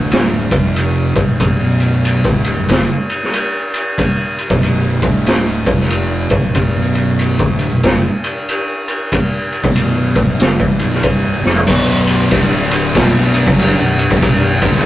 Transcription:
Already playing: D1 D2 A2 D3
0.11 snare, ride
0.51 F1 F2 C3 F3, kick, ride
0.76 ride
1.16 G1 G2 D3, kick, ride
1.28 B0 B1 F#2
1.40 B0 B1 F#2, kick, ride
1.60 B0 B1 F#2 B2
1.80 ride
2.05 ride
2.24 D1 D2 A2 D3, kick
2.44 ride
2.57 B0 B1 F#2
2.68 F#1 F#2 C#3, kick, snare, ride
3.09 ride
3.23 snare
3.33 ride
3.74 ride
3.98 kick, ride
4.38 ride
4.50 B0 B1 F#2 B2, kick
4.63 ride
5.02 D1 D2 A2 D3, kick, ride
5.26 snare, ride
5.66 F1 F2 C3 F3, kick, ride
5.80 snare
5.90 ride
6.30 G1 G2 D3, kick, ride
6.43 B0 B1 F#2
6.55 B0 B1 F#2, kick, ride
6.75 B0 B1 F#2 B2
6.95 ride
7.19 ride
7.39 D1 D2 A2 D3, kick
7.59 ride
7.71 B0 B1 F#2
7.83 F#1 F#2 C#3, kick, snare, ride
8.24 ride
8.48 ride
8.88 ride
9.12 kick, ride
9.52 ride
9.64 B0 B1 F#2 B2, kick
9.76 ride
10.15 D1 D2 A2, kick, ride
10.28 B0 B1 F#2
10.40 F#1 F#2 C#3, snare, ride
10.60 A1 A2 E3, kick
10.79 B0 B1 F#2 B2, ride
10.93 snare
11.03 C1 C2 G2 C3, kick, ride
11.44 F1 F2 C3 F3, snare
11.55 floor tom
11.67 B0 B1 F#2 B2, kick, crash
12.07 ride
12.31 D1 D2 A2 D3, kick, ride
12.71 ride
12.95 B0 B1 F#2 B2, kick, snare, ride
13.34 ride
13.47 F#1 F#2 C#3 F#3, kick
13.59 ride
13.79 B0 B1 F#2
13.99 ride
14.11 B0 B1 F#2, kick
14.22 B0 B1 F#2, kick, ride
14.62 D1 D2 A2 D3, kick, ride
14.76 snare

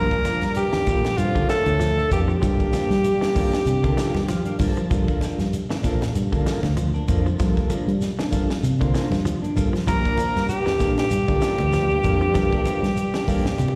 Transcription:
Already playing: A#2 F3 A#3 F4 A#4
0.11 D4, kick, shekere
0.24 F3 A#3 D4, muted fingered electric bass stroke, snare, closed hi-hat, high conga, shekere
0.41 G2, snare, closed hi-hat, shekere
0.55 G2 G3 G4, closed hi-hat, shekere
0.73 E3 A#3 D4, snare, high conga, shekere
0.86 A#2 F3 A#3 D4 F4 A4, kick, closed hi-hat, high conga, shekere
1.04 snare, closed hi-hat, shekere
1.18 F2 G2 F3 F4, closed hi-hat, shekere
1.35 D3 A#3 D4 F4 A4, kick, shekere
1.47 A2 E3 F3 A3 A#3 D4 A4, snare, closed hi-hat, shekere
1.66 D2, closed hi-hat, high conga, shekere
1.80 F3, snare, closed hi-hat, high conga, shekere
1.97 A#3 D4, shekere
2.10 F2 G2 F3 G3 A#3 D4 F4 G4 A4, kick, closed hi-hat, high conga, low conga, shekere
2.28 G2 F3 G3 G4, shekere
2.41 G2 F3 A#3 F4 A4, kick, closed hi-hat, low conga, shekere
2.59 A#3 D4, kick, shekere
2.72 F3 A#3 D4, snare, closed hi-hat, high conga, shekere
2.90 G3, snare, closed hi-hat, shekere
3.04 closed hi-hat, shekere
3.21 E3 A#3 D4, snare, closed hi-hat, shekere
3.35 G2 F3 A#3 D4 F4 A4, kick, open hi-hat, high conga, shekere
3.53 snare, shekere
3.66 C3, closed hi-hat, shekere
3.83 D3 A#3 D4 F4 A4, kick, closed hi-hat, shekere
3.97 E3 F3 A#3 D4 D5, snare, closed hi-hat, shekere
4.14 G2, snare, high conga, shekere
4.28 F3 F5, snare, closed hi-hat, high conga, shekere
4.45 A#3 D4, closed hi-hat, shekere
4.59 G2 F3 A#3 D4 F4 A4 A5, kick, open hi-hat, low conga, shekere
4.77 F3, closed hi-hat, shekere
4.91 G2 F3 A#3 F4 A4, kick, closed hi-hat, low conga, shekere
5.07 A#3 D4, kick, high conga, shekere
5.21 F3 A#3 D4, muted fingered electric bass stroke, snare, closed hi-hat, high conga, shekere
5.39 G2, snare, closed hi-hat, shekere
5.53 closed hi-hat, shekere
5.69 E3 A#3 D4, snare, shekere
5.83 A#2 F3 A#3 D4 F4 A4, kick, snare, closed hi-hat, high conga, shekere
6.01 snare, closed hi-hat, low conga, shekere
6.15 G2, closed hi-hat, shekere
6.32 D3 A#3 D4 F4 A4, kick, high conga, shekere
6.46 E3 F3 A#3 D4, snare, closed hi-hat, shekere
6.63 D2, snare, closed hi-hat, high conga, shekere
6.77 F3, closed hi-hat, high conga, shekere
6.94 A#3 D4, shekere
7.08 F2 F3 A#3 D4 F4 A4, kick, closed hi-hat, low conga, shekere
7.26 F3, shekere
7.38 G2 F3 A#3 F4 A4, kick, snare, closed hi-hat, low conga, shekere
7.57 A#3, kick, shekere
7.70 F3 A#3 D4, closed hi-hat, high conga, shekere
7.87 G3, closed hi-hat, shekere
8.01 snare, closed hi-hat, shekere
8.19 E3 A#3 D4, snare, closed hi-hat, shekere
8.31 G2 F3 A#3 D4 F4 A4, muted clean electric guitar stroke, kick, snare, closed hi-hat, high conga, shekere
8.50 snare, shekere
8.63 C3, closed hi-hat, shekere
8.80 D3 A#3 D4 F4 C5, kick, closed hi-hat, high conga, shekere
8.93 E3 F3 A#3 D4, snare, closed hi-hat, shekere
9.11 G2, snare, high conga, shekere
9.25 F3, closed hi-hat, high conga, shekere
9.42 A#3 D4, closed hi-hat, shekere
9.56 G2 F3 A#3 F4 A4, muted clean electric guitar stroke, kick, closed hi-hat, high conga, low conga, shekere
9.73 F3, snare, closed hi-hat, shekere
9.87 G2 A#2 F3 A#3 F4 A#4, kick, closed hi-hat, low conga, shekere
10.05 A#3 D4, kick, shekere
10.17 F3 A#3 D4, muted fingered electric bass stroke, closed hi-hat, high conga, shekere
10.36 G2, snare, closed hi-hat, shekere
10.49 G2 G3 G4, closed hi-hat, shekere
10.66 E3 A#3 D4, snare, high conga, shekere
10.79 A#2 A#3 D4 F4 A4, kick, snare, closed hi-hat, high conga, shekere
10.97 G2 G3 G4, snare, closed hi-hat, shekere
11.10 G2, closed hi-hat, shekere
11.28 D3 A#3 D4 F4 A4, kick, high conga, shekere
11.41 E3 F3 A#3 D4, snare, closed hi-hat, shekere
11.58 D2, closed hi-hat, high conga, shekere
11.72 F3, snare, closed hi-hat, high conga, shekere
11.90 A#3 D4, shekere
12.03 F2 A#3 D4 F4 A4, muted clean electric guitar stroke, kick, closed hi-hat, low conga, shekere
12.21 F3, shekere
12.34 G2 F3 A#3 F4 A4, kick, snare, closed hi-hat, low conga, shekere
12.52 A#3 D4, kick, high conga, shekere
12.65 F3 A#3 D4, closed hi-hat, high conga, shekere
12.83 G3, snare, closed hi-hat, shekere
12.96 closed hi-hat, shekere
13.14 E3 A#3 D4, snare, closed hi-hat, shekere
13.27 G2 F3 A#3 D4 F4 A4, kick, open hi-hat, high conga, shekere
13.45 snare, low conga, shekere
13.58 C3, closed hi-hat, high conga, shekere
13.68 high conga

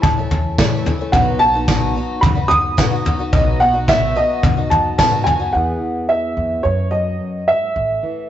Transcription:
Already playing: E3 A3 C#4 E4
0.02 E2 A5, kick, floor tom
0.18 A3 C#4 E4
0.31 E2, floor tom
0.58 A2 E3 A3 C#4 E4, kick, snare, tambourine
0.86 E3 A3 C#4 E4, floor tom
0.99 A3 C#4 E4
1.12 B1 B2 F#3 B3 D#4 F#4 F#5, kick, floor tom
1.39 F#3 B3 D#4 F#4 A5
1.54 B3 D#4 F#4
1.68 B2 F#3 B3 D#4 F#4, kick, snare, tambourine
1.95 F#3 B3 D#4 F#4
2.21 F#2 B5, kick, floor tom
2.35 B3 D#4 F#4
2.48 F#2 D#6, floor tom
2.77 B2 F#3 B3 D#4 F#4, kick, snare, tambourine
2.92 B3 D#4 F#4
3.05 F#3 B3 D#4 F#4, floor tom
3.19 B3 D#4 F#4
3.33 B1 B2 F#3 B3 D#4 F#4 D#5, kick, floor tom
3.60 F#3 B3 D#4 F#4 F#5
3.73 B3 D#4 F#4
3.88 B2 F#3 B3 D#4 F#4 E5, kick, snare, tambourine
4.15 F#3 B3 D#4 F#4 D#5
4.43 F#2, kick, floor tom
4.57 B3 D#4 F#4
4.70 F#2 A5, floor tom
4.98 G#2 B2 F#3 B3 D#4 F#4 A5, kick, snare, tambourine
5.11 B3 D#4 F#4
5.24 F#2 F#3 B3 D#4 G#5, floor tom
5.29 F#4
5.40 B3 D#4 F#4
5.53 E2 E3 B3 E4 G#4 F#5
5.80 E3
6.09 E5
6.37 E2 F2
6.63 F#2 C#5
6.91 F#3 D#5
7.20 F#2
7.48 G#2 E5
7.75 A1 A2
8.03 E3

